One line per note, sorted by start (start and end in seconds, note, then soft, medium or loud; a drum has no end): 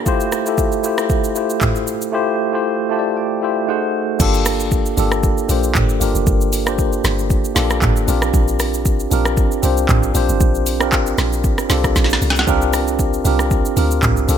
0.05 0.37 A3 loud
0.05 0.38 E4 loud
0.05 0.38 F4 loud
0.05 0.38 G4 loud
0.05 0.39 C5 loud
0.05 kick loud
0.05 shaker medium
0.20 shaker medium
0.32 cross-stick medium
0.32 shaker loud
0.45 0.76 A3 medium
0.45 0.77 E4 medium
0.45 0.77 F4 medium
0.45 0.77 G4 medium
0.45 0.78 A4 loud
0.45 shaker medium
0.58 kick medium
0.58 shaker medium
0.72 shaker soft
0.83 1.26 A3 medium
0.83 1.26 E4 medium
0.83 1.26 F4 medium
0.83 1.27 G4 medium
0.83 1.27 C5 medium
0.83 shaker medium
0.98 cross-stick loud
0.98 shaker medium
1.10 kick loud
1.10 shaker medium
1.24 shaker medium
1.34 1.98 A3 medium
1.34 1.98 E4 medium
1.34 1.99 F4 medium
1.34 1.99 G4 medium
1.34 2.00 C5 medium
1.34 shaker medium
1.50 shaker medium
1.61 kick loud
1.61 clap medium
1.61 mid tom medium
1.61 shaker medium
1.76 shaker medium
1.87 shaker loud
2.02 shaker medium
2.12 2.44 A3 loud
2.12 2.44 E4 loud
2.12 2.45 F4 loud
2.12 2.45 G4 loud
2.12 2.46 C5 loud
2.52 2.83 A3 medium
2.52 2.84 E4 medium
2.52 2.84 F4 medium
2.52 2.84 G4 medium
2.52 2.85 C5 loud
2.90 3.33 A3 medium
2.90 3.33 E4 medium
2.90 3.33 F4 medium
2.90 3.34 G4 medium
2.90 2.98 C5 medium
2.90 3.15 A5 medium
2.99 3.37 D5 medium
3.17 3.41 G5 medium
3.41 3.66 A3 medium
3.41 3.68 E4 medium
3.41 3.68 F4 medium
3.41 3.69 G4 medium
3.41 3.69 C5 medium
3.41 3.67 E5 medium
3.67 4.10 A3 medium
3.67 4.10 D#4 medium
3.67 4.11 F#4 medium
3.67 4.11 G#4 medium
3.67 4.12 C5 loud
3.67 4.17 F#5 medium
4.19 4.94 G1 loud
4.19 4.82 A#3 loud
4.19 4.83 D4 loud
4.19 4.83 F4 loud
4.19 4.84 G4 loud
4.19 4.84 A4 loud
4.19 kick loud
4.19 crash loud
4.19 shaker medium
4.34 shaker medium
4.46 cross-stick medium
4.46 open hi-hat medium
4.46 shaker loud
4.60 shaker medium
4.72 kick medium
4.72 shaker medium
4.86 shaker medium
4.96 5.34 G1 loud
4.96 5.39 A#3 medium
4.96 5.40 D4 medium
4.96 5.40 F4 medium
4.96 5.41 G4 medium
4.96 5.41 A4 medium
4.96 open hi-hat soft
4.96 shaker medium
5.12 cross-stick loud
5.12 shaker medium
5.23 kick loud
5.23 shaker medium
5.38 shaker medium
5.48 5.73 A#1 medium
5.48 5.91 A#3 medium
5.48 5.92 D4 medium
5.48 5.92 F4 medium
5.48 5.92 G4 medium
5.48 5.93 C5 medium
5.48 open hi-hat medium
5.48 shaker medium
5.64 shaker medium
5.75 5.99 G1 loud
5.75 kick loud
5.75 clap medium
5.75 mid tom medium
5.75 shaker medium
5.89 shaker medium
6.00 6.14 G1 medium
6.00 6.52 A#3 medium
6.00 6.53 D4 medium
6.00 6.53 F4 medium
6.00 6.53 G4 medium
6.00 6.54 A#4 medium
6.00 open hi-hat medium
6.00 shaker medium
6.15 6.26 F1 medium
6.15 shaker medium
6.27 7.01 G1 loud
6.27 kick loud
6.27 shaker medium
6.41 shaker medium
6.53 open hi-hat medium
6.53 shaker loud
6.66 7.38 A#3 medium
6.66 7.39 D4 medium
6.66 7.39 F4 medium
6.66 7.39 G4 medium
6.66 7.40 C5 medium
6.66 cross-stick loud
6.66 shaker medium
6.79 kick loud
6.79 shaker medium
6.93 shaker soft
7.04 7.41 G1 loud
7.04 cross-stick medium
7.04 snare medium
7.04 open hi-hat soft
7.04 shaker medium
7.19 shaker medium
7.30 kick loud
7.30 shaker medium
7.45 shaker medium
7.55 7.80 A#1 loud
7.55 8.07 A#3 medium
7.55 8.06 D4 medium
7.55 8.07 F4 medium
7.55 8.08 G4 medium
7.55 8.09 A4 loud
7.55 snare medium
7.55 open hi-hat medium
7.55 shaker medium
7.70 cross-stick loud
7.70 shaker medium
7.82 8.06 G1 loud
7.82 kick loud
7.82 clap medium
7.82 mid tom medium
7.82 shaker medium
7.96 shaker medium
8.07 8.32 A#1 loud
8.07 8.91 C4 medium
8.07 8.91 D4 medium
8.07 8.91 F4 medium
8.07 8.92 G4 medium
8.07 8.92 A#4 loud
8.07 open hi-hat medium
8.07 shaker loud
8.22 cross-stick loud
8.22 shaker medium
8.34 9.07 A#1 loud
8.34 kick loud
8.34 shaker medium
8.48 shaker medium
8.60 cross-stick medium
8.60 open hi-hat medium
8.60 shaker loud
8.74 shaker medium
8.86 kick loud
8.86 shaker medium
9.00 shaker soft
9.10 9.48 A#1 loud
9.10 9.53 C4 medium
9.10 9.54 D4 medium
9.10 9.54 F4 medium
9.10 9.54 G4 medium
9.10 9.55 A#4 loud
9.10 open hi-hat soft
9.10 shaker medium
9.25 cross-stick loud
9.25 shaker medium
9.37 kick loud
9.37 shaker medium
9.52 shaker medium
9.62 9.87 C2 medium
9.62 10.05 C4 medium
9.62 10.05 D4 medium
9.62 10.06 F4 medium
9.62 10.06 G4 medium
9.62 10.06 C5 medium
9.62 open hi-hat medium
9.62 shaker medium
9.77 shaker medium
9.89 10.13 A#1 medium
9.89 kick loud
9.89 clap medium
9.89 mid tom medium
9.89 shaker medium
10.03 shaker medium
10.14 10.28 A#1 medium
10.14 10.66 C4 medium
10.14 10.66 D4 medium
10.14 10.67 F4 medium
10.14 10.67 G4 medium
10.14 10.67 C5 loud
10.14 open hi-hat medium
10.14 shaker medium
10.29 10.40 G1 medium
10.29 shaker medium
10.41 11.14 A#1 loud
10.41 kick loud
10.41 shaker medium
10.55 shaker medium
10.66 open hi-hat medium
10.66 shaker loud
10.80 11.52 C4 medium
10.80 11.52 D4 medium
10.80 11.53 F4 medium
10.80 11.53 G4 medium
10.80 11.54 A#4 medium
10.80 cross-stick loud
10.80 shaker medium
10.92 kick loud
10.92 clap loud
10.92 shaker medium
11.07 shaker medium
11.18 11.55 A#1 loud
11.18 cross-stick medium
11.18 snare medium
11.18 open hi-hat soft
11.18 shaker medium
11.33 shaker medium
11.44 kick loud
11.44 shaker medium
11.58 cross-stick loud
11.58 shaker medium
11.69 11.94 C2 medium
11.69 12.32 C4 medium
11.69 12.33 D4 medium
11.69 12.33 F4 medium
11.69 12.34 G4 medium
11.69 12.34 A4 loud
11.69 snare medium
11.69 open hi-hat medium
11.69 shaker medium
11.84 kick loud
11.84 cross-stick loud
11.84 shaker medium
11.96 12.20 A#1 loud
11.96 kick loud
11.96 snare medium
11.96 shaker medium
12.04 snare medium
12.10 snare medium
12.10 shaker medium
12.22 12.45 C2 medium
12.22 open hi-hat medium
12.22 shaker loud
12.30 snare loud
12.36 snare loud
12.36 shaker medium
12.46 13.21 C2 loud
12.46 13.10 C4 loud
12.46 13.10 D4 loud
12.46 13.11 F4 loud
12.46 13.11 G4 loud
12.46 13.12 A#4 loud
12.46 kick loud
12.46 shaker medium
12.62 shaker medium
12.73 cross-stick medium
12.73 open hi-hat medium
12.73 shaker loud
12.88 shaker medium
12.99 kick loud
12.99 shaker medium
13.13 shaker soft
13.24 13.62 C2 loud
13.24 13.67 C4 medium
13.24 13.67 D4 medium
13.24 13.68 F4 medium
13.24 13.68 G4 medium
13.24 13.68 A#4 medium
13.24 open hi-hat soft
13.24 shaker medium
13.39 cross-stick medium
13.39 shaker medium
13.51 kick loud
13.51 shaker medium
13.65 shaker medium
13.76 14.00 D2 medium
13.76 14.19 C4 medium
13.76 14.19 D4 medium
13.76 14.19 F4 medium
13.76 14.20 G4 medium
13.76 14.20 A#4 medium
13.76 open hi-hat medium
13.76 shaker medium
13.91 shaker medium
14.03 14.26 C2 medium
14.03 kick medium
14.03 clap medium
14.03 mid tom medium
14.03 shaker medium
14.17 shaker medium
14.27 14.38 C2 medium
14.27 14.38 C4 medium
14.27 14.38 D4 medium
14.27 14.38 F4 medium
14.27 14.38 G4 medium
14.27 14.38 A4 loud
14.27 open hi-hat medium
14.27 shaker medium